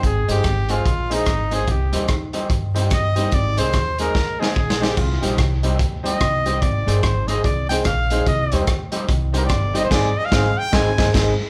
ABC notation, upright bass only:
X:1
M:4/4
L:1/8
Q:"Swing" 1/4=146
K:Ablyd
V:1 name="Upright bass" clef=bass
A,,, G,,, A,,,2 B,,,2 A,,,2 | C,, D,, E,,2 G,,2 G,,,2 | A,,, C,, E,,2 D,,2 B,,,2 | C,, B,,, C,,2 D,,2 C,,2 |
A,,, G,,, A,,,2 C,,2 B,,,2 | C,, E,, D,,2 C,,2 G,,,2 | A,,, z A,,, z A,,, A,,, A,,, z |]